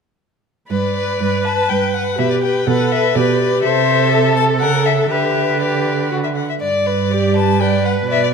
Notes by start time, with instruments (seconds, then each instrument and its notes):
0.71 cello G2, violin B4 D5, viola B4
0.96 violin B4
1.21 cello G2, violin B4
1.45 violin B4 A5
1.70 cello G2, violin B4 G5
1.94 violin B4 F#5
2.18 cello B2, viola G4, violin B4 E5
2.30 violin D5
2.42 violin B4 G5
2.67 cello B2, viola A4, violin B4 F#5
2.92 violin B4 E5
3.16 cello B2, viola G4, violin B4 D5
3.41 violin B4
3.63 cello C3, violin A4 E5, viola C5
4.14 viola A4
4.36 violin A5
4.60 cello C#3, violin A#4 F#5
4.85 violin A4 E5
5.09 cello D3, violin G4 E5, viola B4
5.61 violin G4 D5
6.11 violin F#4
6.24 violin E5
6.35 violin F#5
6.49 violin E5
6.61 cello G2, violin D5
6.86 violin B4
7.11 viola G4, violin D5
7.35 violin B4 A5
7.60 viola B4, violin D5 G5
7.84 violin B4 F#5
8.09 cello B2, violin D5 E5
8.24 violin D5